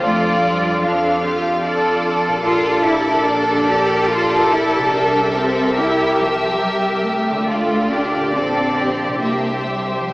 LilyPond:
<<
  \new Staff \with { instrumentName = "Violin section" } { \time 3/4 \key c \mixolydian \tempo 4 = 72 d''4 f''4 d''4 | d''2. | e''2. | d''2 e''4 | }
  \new Staff \with { instrumentName = "Viola section" } { \time 3/4 \key c \mixolydian << { a'4 a'4 a'4 | bes'2.~ | bes'2. | a'4 d''4 c''4 | } \\ { f'4 d'8 g'8 f'4 | g'2.~ | g'2. | f'4 g'2 | } >> }
  \new Staff \with { instrumentName = "Violin section" } { \time 3/4 \key c \mixolydian f'4 d'8 f'8 a'4~ | a'2.~ | a'4 g'2 | f'8 g'8 a'8 g'8 g'4 | }
  \new Staff \with { instrumentName = "Harp" } { \time 3/4 \key c \mixolydian <f d' f' a'>2. | <bes, d' g' bes'>2. | <c e' g' bes'>2. | <d d' f' a'>4 <bes, d' g'>4 <c c' e' g'>4 | }
  \new Staff \with { instrumentName = "Cello section" } { \time 3/4 \key c \mixolydian a8 g8 f8 r4. | f'8 e'8 d'8 g'8 f'8 e'8 | d'8 c'8 e'8 f8 g8 a8~ | a8 d'8 c'4 bes8 g8 | }
  \new Staff \with { instrumentName = "Double bass section" } { \clef bass \time 3/4 \key c \mixolydian f,2. | bes,,2. | c,2. | d,4 bes,,4 c,4 | }
>>